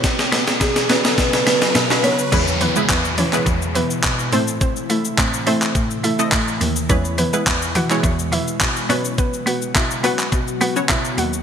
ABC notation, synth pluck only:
X:1
M:4/4
L:1/16
Q:1/4=105
K:E
V:1 name="Synth pluck"
z16 | [Cc]2 [B,B]2 [B,B]2 [Cc] z3 [B,B] z3 [=C=c] z | [=C=c]2 [Ee]2 [Cc]2 [Cc] z3 [Ee] z4 z | [Cc]2 [B,B]2 [B,B]2 [Ff] z3 [Ee] z3 [Cc] z |
[B,B]2 [Ff]2 [Ee]2 [Ff] z3 [Ff] z [Ee] z [Ff] z |]